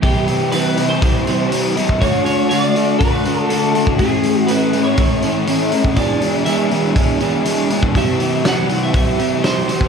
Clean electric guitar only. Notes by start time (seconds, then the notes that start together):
0.03 G4
0.52 B4
0.89 C5
2.01 C#5
2.25 C#5
2.49 C#5
2.60 D5
2.99 B4
3.41 A4
3.49 A4
3.98 G#4
4.47 B4
4.84 C#5
5.96 D5
6.45 E5
7.98 E5
8.48 F#5
8.83 E5
8.96 E5
9.43 C5